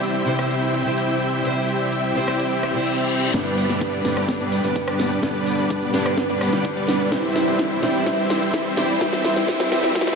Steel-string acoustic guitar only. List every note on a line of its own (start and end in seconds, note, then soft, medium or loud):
0.00 0.24 C3 medium
0.00 0.24 C4 medium
0.00 0.24 E4 medium
0.00 0.24 G4 medium
0.00 0.25 C5 medium
0.26 0.83 C3 medium
0.26 0.83 C4 medium
0.26 0.83 E4 medium
0.26 0.84 G4 medium
0.26 0.84 C5 loud
0.85 1.42 C3 medium
0.85 1.42 C4 medium
0.85 1.42 E4 medium
0.85 1.43 G4 medium
0.85 1.43 C5 medium
1.44 2.13 C3 medium
1.44 2.13 C4 medium
1.44 2.13 E4 medium
1.44 2.13 G4 medium
1.44 2.14 C5 medium
2.15 2.72 C3 medium
2.15 2.72 C4 medium
2.15 2.72 E4 medium
2.15 2.73 G4 medium
2.15 2.73 C5 loud
2.74 3.31 C3 medium
2.74 3.31 C4 medium
2.74 3.31 E4 medium
2.74 3.32 G4 medium
2.74 3.32 C5 medium
3.33 4.02 G2 medium
3.33 4.02 D3 medium
3.33 4.02 G3 medium
3.33 4.02 B3 medium
3.33 4.03 D4 medium
4.04 4.61 G2 medium
4.04 4.61 D3 medium
4.04 4.61 G3 medium
4.04 4.61 B3 medium
4.04 4.62 D4 loud
4.63 5.20 G2 medium
4.63 5.20 D3 medium
4.63 5.20 G3 medium
4.63 5.21 B3 medium
4.63 5.21 D4 medium
5.22 5.91 G2 medium
5.22 5.91 D3 medium
5.22 5.91 G3 medium
5.22 5.91 B3 medium
5.22 5.92 D4 medium
5.93 6.50 G2 medium
5.93 6.50 D3 medium
5.93 6.50 G3 medium
5.93 6.50 B3 medium
5.93 6.51 D4 loud
6.52 7.09 G2 medium
6.52 7.09 D3 medium
6.52 7.09 G3 medium
6.52 7.10 B3 medium
6.52 7.10 D4 loud
7.11 7.79 E3 medium
7.11 7.80 G3 medium
7.11 7.80 C4 medium
7.11 7.81 E4 medium
7.82 8.04 E3 medium
7.82 8.04 G3 medium
7.82 8.05 C4 medium
7.82 8.05 E4 loud
8.05 8.74 E3 medium
8.05 8.74 G3 medium
8.05 8.75 C4 medium
8.05 8.75 E4 medium
8.76 8.99 E3 medium
8.76 8.99 G3 medium
8.76 8.99 C4 medium
8.76 9.00 E4 loud
9.00 9.46 E3 medium
9.00 9.46 G3 medium
9.00 9.47 C4 medium
9.00 9.47 E4 medium
9.47 9.93 E3 medium
9.47 9.93 G3 medium
9.47 9.94 C4 medium
9.47 9.94 E4 medium
9.94 10.15 E3 medium
9.94 10.15 G3 medium
9.94 10.15 C4 medium
9.94 10.15 E4 medium